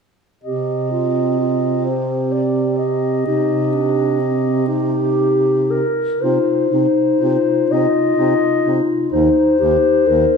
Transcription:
0.43 baritone saxophone C3, clarinet C4 G4 D#5
0.91 clarinet F4
1.39 clarinet F4
1.85 clarinet C5
1.89 clarinet G4
2.32 clarinet D5
2.78 clarinet D#5
3.26 baritone saxophone C3, clarinet D#4 G4
3.73 clarinet D4
4.20 clarinet C4
4.68 clarinet D#4 G4
5.71 clarinet A#4
6.20 baritone saxophone C3, clarinet D#4 F4 C5
6.69 baritone saxophone C3, clarinet D#4
7.19 baritone saxophone C3, clarinet D#4 F4
7.69 baritone saxophone C3, clarinet D#4 D#5
8.17 baritone saxophone C3, clarinet D#4
8.63 baritone saxophone C3, clarinet D#4
9.11 baritone saxophone D#2, clarinet D#4 C5
9.59 baritone saxophone D#2, clarinet D#4 G4
10.07 baritone saxophone D#2, clarinet D#4 A#4

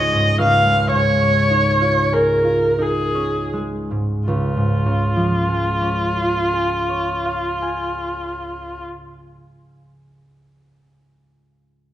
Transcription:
Already playing: harp C#2 G#2 G#3 C#4 D#4 F4 G#4, viola D#5
0.14 harp G#2
0.39 harp C#2, viola F5
0.65 harp G#3
0.93 harp G#2, viola C#5
1.21 harp C#4
1.50 harp D#4
1.81 harp F4
2.13 harp G#4, viola A#4
2.44 harp F4
2.78 harp D#4, viola G#4
3.15 harp C#4
3.53 harp G#3
3.91 harp G#2
4.28 harp C#2, viola F4
4.57 harp G#2
4.86 harp C#3
5.16 harp F3
5.48 harp G#3
5.81 harp C#4
6.17 harp F4
6.53 harp G#4
6.89 harp C#5
7.26 harp F5
7.62 harp G#5

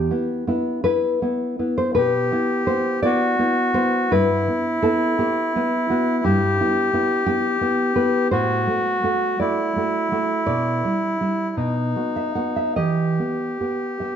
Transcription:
Already playing: nylon-string guitar G4
0.11 nylon-string guitar B3 E4
0.47 nylon-string guitar B3 E4
0.84 nylon-string guitar B3 E4 B4
1.22 nylon-string guitar B3 E4
1.59 nylon-string guitar B3 E4
1.78 nylon-string guitar C5
1.95 nylon-string guitar B2 B4, bandoneon G4
2.32 nylon-string guitar B3 E4
2.67 nylon-string guitar B3 E4 C5
3.03 nylon-string guitar B3 E4 D5, bandoneon F#4
3.39 nylon-string guitar B3 E4
3.74 nylon-string guitar B3 E4 C5
4.11 nylon-string guitar G2 B4, bandoneon E4
4.48 nylon-string guitar B3 E4
4.82 nylon-string guitar B3 E4 A4
5.19 nylon-string guitar B3 E4 G4
5.56 nylon-string guitar B3 E4
5.90 nylon-string guitar B3 E4 F#4
6.24 nylon-string guitar G2 E4, bandoneon G4
6.60 nylon-string guitar B3 E4
6.93 nylon-string guitar B3 E4
7.26 nylon-string guitar B3 E4 G4
7.61 nylon-string guitar B3 E4
7.96 nylon-string guitar B3 E4 B4
8.31 nylon-string guitar A2 C5, bandoneon F#4
8.67 nylon-string guitar A3 F#4
9.03 nylon-string guitar A3 F#4
9.40 nylon-string guitar A3 F#4 D5, bandoneon E4
9.76 nylon-string guitar A3 F#4
10.12 nylon-string guitar A3 F#4
10.46 nylon-string guitar B2 D5
10.84 nylon-string guitar G3 E4
11.21 nylon-string guitar G3 E4
11.55 nylon-string guitar B2 D#5, bandoneon D#4
11.96 nylon-string guitar B3 F#4
12.16 nylon-string guitar E5
12.35 nylon-string guitar B3 F#4 F#5
12.56 nylon-string guitar E5
12.76 nylon-string guitar E3 D#5, bandoneon G4
13.19 nylon-string guitar B3 G4
13.61 nylon-string guitar B3 G4
14.00 nylon-string guitar B3 G4 E5

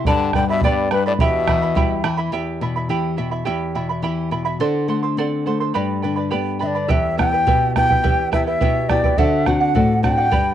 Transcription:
0.05 nylon-string guitar G2, french horn D3, charango G4 B4 D5 G5 B5, quena A5, bombo low
0.33 french horn D3, nylon-string guitar G3, charango B4 D5 G5 B5, quena G5, bombo rim, bombo low
0.48 french horn B2, charango B4 D5 B5, quena E5
0.61 french horn G2, nylon-string guitar B3, charango G4 B4 D5 G5 B5, quena D5, bombo low
0.91 french horn G2, nylon-string guitar G3, charango B4 D5 G5 B5, quena B4, bombo rim
1.06 french horn A2, charango B4 D5 B5, quena D5
1.19 nylon-string guitar E2, french horn B2, charango E4 G4 E5 G5 B5, quena E5, bombo low
1.47 nylon-string guitar E3, charango E4 E5 G5 B5, bombo rim, bombo low
1.62 charango E4 E5 B5
1.75 nylon-string guitar G3, charango E4 G4 E5 G5 B5, bombo low
2.04 nylon-string guitar E3, charango E4 E5 G5 B5, bombo rim
2.17 charango E4 E5 B5
2.32 nylon-string guitar E2, charango E4 G4 E5 G5 B5
2.61 nylon-string guitar B2, charango E4 E5 G5 B5
2.76 charango E4 E5 B5
2.89 nylon-string guitar E3, charango E4 G4 E5 G5 B5
3.17 nylon-string guitar B2, charango E4 E5 G5 B5
3.31 charango E4 E5 B5
3.45 nylon-string guitar E2, charango E4 G4 E5 G5 B5
3.75 nylon-string guitar B2, charango E4 E5 G5 B5
3.89 charango E4 E5 B5
4.02 nylon-string guitar E3, charango E4 G4 E5 G5 B5
4.31 nylon-string guitar B2, charango E4 E5 G5 B5
4.45 charango E4 E5 B5
4.60 nylon-string guitar D3, charango A4 C5 D5 F#5 C6
4.88 nylon-string guitar A3, charango A4 C5 F#5 C6
5.03 charango A4 C5 C6
5.17 nylon-string guitar C4, charango A4 C5 D5 F#5 C6
5.46 nylon-string guitar A3, charango A4 C5 F#5 C6
5.60 charango A4 C5 C6
5.74 nylon-string guitar G2, charango G4 B4 D5 G5 B5
6.02 nylon-string guitar D3, charango B4 D5 G5 B5
6.16 charango B4 D5 B5
6.31 nylon-string guitar B3, charango G4 B4 D5 G5 B5
6.59 nylon-string guitar D3, charango B4 D5 G5 B5, quena E5
6.67 quena D5
6.75 charango B4 D5 B5
6.88 nylon-string guitar E2, charango E4 G4 B4 E5 G5, quena E5, bombo low
7.17 nylon-string guitar B3 E4 G4, charango E4 B4 E5 G5, quena G5, bombo rim, bombo low
7.33 charango E4 B4 G5
7.47 nylon-string guitar B2, charango E4 G4 B4 E5 G5, bombo low
7.76 nylon-string guitar B3 E4 G4, charango E4 B4 E5 G5, quena G5, bombo rim, bombo low
7.90 charango E4 B4 G5, bombo low
8.04 nylon-string guitar E2, charango E4 G4 B4 E5 G5, bombo low
8.32 nylon-string guitar B3 E4 G4, charango E4 B4 E5 G5, quena E5, bombo rim, bombo low
8.46 charango E4 B4 G5, quena E5
8.61 nylon-string guitar B2, charango E4 G4 B4 E5 G5, bombo low
8.89 nylon-string guitar B3 E4 G4, charango E4 B4 E5 G5, quena D5, bombo rim, bombo low
9.04 charango E4 B4 G5, bombo low
9.18 nylon-string guitar D3, charango F#4 A4 C5 D5 F#5, quena E5, bombo low
9.46 nylon-string guitar C4 D4 F#4, charango F#4 C5 D5 F#5, quena F#5, bombo rim, bombo low
9.60 charango F#4 D5 F#5
9.75 nylon-string guitar A2, charango F#4 A4 C5 D5 F#5, bombo low
10.03 nylon-string guitar C4 D4 F#4, charango F#4 C5 D5 F#5, quena G5, bombo rim, bombo low
10.17 charango F#4 D5 F#5
10.31 nylon-string guitar G2, charango G4 B4 D5 G5 B5, bombo low

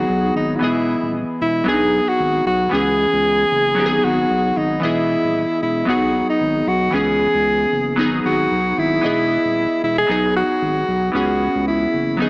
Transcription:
Already playing: synth keys F#3 B3 D#4 G#4, alto saxophone F#4
0.09 sub bass B1
0.35 sub bass G#1, alto saxophone D#4
0.56 synth keys E3, alto saxophone F#4
0.61 sub bass E1, synth keys B3 G#4 D#5, alto saxophone E4
1.02 sub bass D#1
1.40 sub bass E1, alto saxophone E4
1.64 sub bass B1, synth keys F#3 B3 D4, alto saxophone G#4
1.69 synth keys G#4
1.74 synth keys D#4
2.09 alto saxophone F#4
2.19 sub bass G#1
2.46 sub bass B1, alto saxophone F#4
2.69 sub bass C#2, synth keys E3 B3 C#4, alto saxophone G#4
2.74 synth keys G#4
3.13 sub bass C#2
3.51 sub bass F#1
3.75 sub bass G#1, synth keys F#3 B3 D#4
3.80 synth keys G4
3.86 synth keys G#4
4.03 sub bass G#1, alto saxophone F#4
4.30 sub bass B1
4.56 sub bass G#1, alto saxophone D#4
4.80 sub bass E1, synth keys E3 B3 D#5, alto saxophone E4
4.85 synth keys G#4
5.23 sub bass D#1
5.61 sub bass E1, alto saxophone E4
5.85 sub bass B1, synth keys F#3 B3 D#4, alto saxophone F#4
5.90 synth keys G#4
6.30 alto saxophone D#4
6.40 sub bass G#1
6.67 sub bass B1, alto saxophone F#4
6.90 sub bass C#2, synth keys E3 B3 C#4, alto saxophone G#4
6.95 synth keys G#4
7.34 sub bass C#2
7.72 sub bass F#1
7.96 sub bass G#1, synth keys F#3 B3 D#4
8.01 synth keys G#4
8.25 sub bass G#1, alto saxophone F#4
8.51 sub bass B1
8.77 sub bass G#1, alto saxophone E4
9.01 sub bass E1, synth keys E3 B3 D#5
9.06 synth keys G#4
9.44 sub bass D#1
9.82 sub bass E1, alto saxophone E4
9.98 alto saxophone G#4
10.06 sub bass B1, synth keys F#3 B3 D#4
10.11 synth keys G#4
10.36 alto saxophone F#4
10.61 sub bass G#1
10.88 sub bass B1
11.12 sub bass C#2, synth keys E3 B3 C#4, alto saxophone F#4
11.17 synth keys G#4
11.55 sub bass C#2
11.68 alto saxophone E4
11.93 sub bass F#1
12.17 sub bass G#1, synth keys F#3 B3 D#4, alto saxophone D#4
12.22 synth keys G#4

